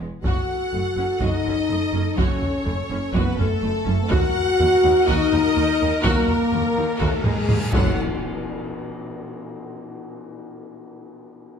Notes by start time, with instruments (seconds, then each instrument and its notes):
0.00 double bass section E1, cello section E2, violin section B3
0.23 double bass section F#1, cello section F#2, french horn section F#4, trombone section F#4, viola section F#4 A4, violin section F#5, taiko
0.73 double bass section F#1, cello section F#2, viola section A3
0.97 double bass section F#1, cello section F#2, viola section C#4
1.20 double bass section F#1, cello section F#2, french horn section D#4, trombone section D#4, viola section F#4, violin section D#5, taiko
1.45 double bass section F#1, cello section F#2, viola section C#4
1.70 double bass section F#1, cello section F#2, viola section A3
1.93 double bass section F#1, cello section F#2, viola section C#4
2.17 double bass section F#1, cello section F#2, french horn section C#4, trombone section C#4, viola section F#4, violin section C#5, taiko
2.42 taiko low
2.65 double bass section F#1, cello section F#2, viola section A3, taiko low
2.89 double bass section F#1, cello section F#2, viola section C#4
3.13 double bass section F#1, cello section F#2, trombone section B3, french horn section B3, viola section F#4, violin section B4, taiko
3.37 double bass section F#1, cello section F#2, french horn section A3, trombone section A3, viola section C#4, violin section A4, taiko low
3.62 double bass section F#1, cello section F#2, viola section A3
3.85 double bass section F#1, cello section F#2, viola section C#4
4.09 cello section D#2, double bass section D#2, viola section F#4 A#4, french horn section F#4, trombone section F#4, violin section F#5, taiko
4.36 taiko low
4.59 cello section D#2, double bass section D#2, viola section A#3, taiko low
4.84 cello section D#2, double bass section D#2, viola section D#4
5.07 cello section D#2, double bass section D#2, french horn section D#4, trombone section D#4, viola section F#4, violin section D#5, taiko
5.32 cello section D#2, double bass section D#2, viola section D#4, taiko low
5.56 cello section D#2, double bass section D#2, viola section A#3
5.80 cello section D#2, double bass section D#2, viola section D#4
6.02 cello section D#2, double bass section D#2, trombone section A#3, french horn section A#3, viola section F#4, violin section A#4, taiko, reverse cymbal
6.28 taiko low
6.52 cello section D#2, double bass section D#2, viola section A#3, taiko low
6.77 double bass section D#2, cello section D#2, viola section D#4
7.00 cello section D#2, double bass section D#2, trombone section A3, french horn section A3, viola section F#4, violin section A4, taiko
7.24 double bass section D#2, cello section D#2, trombone section G#3, french horn section G#3, viola section D#4, violin section G#4, taiko low-mid
7.49 cello section D#2, double bass section D#2, viola section A#3, taiko low-mid
7.72 double bass section F#1, cello section F#2, trombone section F#3, french horn section F#3, viola section F#4 A4, violin section F#5, taiko, tam-tam, impact